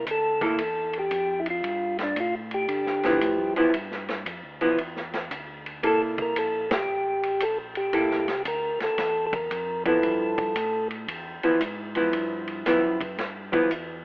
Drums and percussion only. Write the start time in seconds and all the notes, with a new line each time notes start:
0.06 kick, hi-hat pedal, ride
0.41 kick, ride
0.58 kick, ride
0.93 ride
1.11 kick, hi-hat pedal, ride
1.46 ride
1.64 kick, ride
1.98 snare, ride
2.16 kick, hi-hat pedal, ride
2.51 ride
2.68 kick, ride
2.86 snare
3.03 snare, ride
3.21 kick, hi-hat pedal, ride
3.56 ride
3.74 kick, ride
3.91 snare
4.08 snare, ride
4.26 kick, hi-hat pedal, ride
4.61 ride
4.78 kick, ride
4.96 snare
5.13 snare, ride
5.31 kick, hi-hat pedal, ride
5.66 ride
5.83 kick, ride
6.18 kick, ride
6.36 kick, hi-hat pedal, ride
6.71 snare, ride
7.23 ride
7.40 kick, hi-hat pedal, ride
7.75 ride
7.93 kick, ride
8.11 snare
8.28 snare, ride
8.45 kick, hi-hat pedal, ride
8.80 snare, ride
8.98 kick, snare, ride
9.33 kick, ride
9.51 kick, hi-hat pedal, ride
9.85 kick, ride
10.03 kick, ride
10.38 kick, ride
10.55 kick, hi-hat pedal, ride
10.90 ride
11.08 kick, ride
11.43 ride
11.61 kick, hi-hat pedal, ride
11.95 ride
12.13 kick, ride
12.47 ride
12.66 kick, snare, hi-hat pedal, ride
13.01 kick, ride
13.18 kick, snare, ride
13.53 kick, ride
13.71 kick, hi-hat pedal, ride